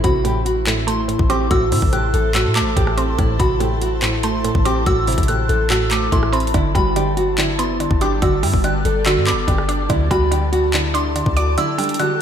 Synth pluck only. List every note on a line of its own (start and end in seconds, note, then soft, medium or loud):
0.00 0.23 A2 medium
0.04 1.09 C3 medium
0.24 0.66 A2 medium
0.67 1.07 A2 medium
0.87 1.92 A3 medium
1.08 1.50 A2 medium
1.30 2.35 C4 medium
1.51 1.92 A2 medium
1.72 2.77 C3 medium
1.93 2.33 A2 medium
2.35 2.75 A2 medium
2.56 3.61 A3 medium
2.77 3.18 A2 medium
2.97 4.02 C4 medium
3.19 3.59 A2 loud
3.40 4.44 C3 medium
3.60 4.01 A2 medium
4.02 4.43 A2 medium
4.24 5.28 A3 medium
4.44 4.85 A2 medium
4.65 5.70 C4 medium
4.86 5.28 A2 medium
5.08 6.12 C3 medium
5.29 5.69 A2 medium
5.70 6.11 A2 medium
5.91 6.54 A3 medium
6.12 6.54 A2 medium
6.33 6.54 C4 medium
6.54 6.95 D3 loud
6.75 7.80 G3 medium
6.96 7.37 D3 medium
7.39 7.79 D3 medium
7.59 8.64 B3 medium
7.80 8.21 D3 medium
8.01 9.06 D4 medium
8.22 8.63 D3 loud
8.43 9.48 G3 medium
8.64 9.05 D3 medium
9.06 9.46 D3 loud
9.27 9.90 B3 medium
9.48 9.89 D3 medium
9.69 9.90 D4 medium
9.90 10.30 D3 loud
10.11 11.16 G3 medium
10.31 10.73 D3 medium
10.74 11.14 D3 medium
10.94 11.99 D4 medium
11.16 11.56 D3 medium
11.37 12.22 D5 medium
11.58 11.98 D3 loud
11.78 12.22 G3 medium
12.00 12.22 D3 medium